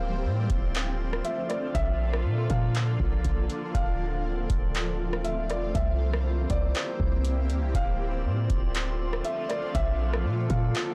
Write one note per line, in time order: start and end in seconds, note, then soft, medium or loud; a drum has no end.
0.00 0.26 D1 loud
0.00 5.71 D3 medium
0.00 1.73 F3 medium
0.00 1.73 A3 medium
0.00 1.71 C4 medium
0.00 1.73 C4 medium
0.00 1.73 F4 medium
0.00 3.71 F4 medium
0.00 1.73 D5 medium
0.00 1.21 F5 medium
0.25 0.49 A2 loud
0.50 1.22 D1 loud
0.50 kick loud
0.50 closed hi-hat medium
0.75 clap loud
0.75 closed hi-hat medium
1.13 cross-stick loud
1.25 1.48 E5 medium
1.25 closed hi-hat medium
1.49 1.73 D5 medium
1.49 cross-stick medium
1.49 closed hi-hat medium
1.75 2.26 A#1 loud
1.75 5.71 F3 medium
1.75 3.73 A#3 medium
1.75 3.73 A4 medium
1.75 5.71 D5 medium
1.75 2.46 E5 loud
1.75 kick loud
1.75 closed hi-hat medium
2.13 cross-stick loud
2.25 2.49 A#2 loud
2.50 2.98 A#2 loud
2.50 2.74 F5 medium
2.50 kick medium
2.50 closed hi-hat medium
2.75 clap loud
2.75 closed hi-hat medium
3.00 3.24 A#1 loud
3.00 kick loud
3.25 3.49 A#1 loud
3.25 kick medium
3.25 closed hi-hat medium
3.50 closed hi-hat medium
3.75 4.47 D1 loud
3.75 5.73 A3 medium
3.75 5.73 C4 medium
3.75 9.71 C4 medium
3.75 5.73 F4 medium
3.75 5.21 F5 medium
3.75 kick loud
3.75 closed hi-hat medium
4.50 5.51 D1 loud
4.50 kick loud
4.50 closed hi-hat medium
4.75 clap loud
4.75 closed hi-hat medium
5.13 cross-stick loud
5.24 5.48 E5 medium
5.24 closed hi-hat medium
5.50 5.74 E1 loud
5.50 5.74 D5 medium
5.50 cross-stick medium
5.50 closed hi-hat medium
5.75 6.47 C2 loud
5.75 7.73 E3 medium
5.75 7.73 G3 medium
5.75 7.73 A#3 medium
5.75 7.73 E4 medium
5.75 7.73 G4 medium
5.75 7.73 C5 medium
5.75 6.46 E5 medium
5.75 kick loud
5.75 closed hi-hat medium
6.13 cross-stick loud
6.50 6.74 C2 loud
6.50 7.71 D5 medium
6.50 kick loud
6.50 closed hi-hat medium
6.75 clap loud
6.75 closed hi-hat medium
7.00 7.51 C2 loud
7.00 kick loud
7.25 closed hi-hat medium
7.50 7.64 D2 loud
7.50 closed hi-hat medium
7.62 7.74 C2 loud
7.75 8.26 D1 loud
7.75 10.94 D3 medium
7.75 10.94 F3 medium
7.75 9.73 A3 medium
7.75 9.73 C4 medium
7.75 10.94 F4 medium
7.75 9.73 F4 medium
7.75 10.94 D5 medium
7.75 9.21 F5 loud
7.75 kick loud
7.75 closed hi-hat medium
8.25 8.49 A2 loud
8.50 9.22 D1 loud
8.50 kick loud
8.50 closed hi-hat medium
8.75 clap loud
8.75 closed hi-hat medium
9.13 cross-stick loud
9.25 9.49 E5 medium
9.25 closed hi-hat medium
9.49 9.73 D5 medium
9.49 cross-stick medium
9.49 closed hi-hat medium
9.75 10.26 A#1 loud
9.75 10.94 A#3 medium
9.75 10.94 A4 medium
9.75 10.46 E5 loud
9.75 kick loud
9.75 closed hi-hat medium
10.13 cross-stick loud
10.25 10.49 A#2 loud
10.50 10.74 A#2 loud
10.50 10.74 F5 medium
10.50 kick loud
10.50 closed hi-hat medium
10.75 clap loud
10.75 closed hi-hat medium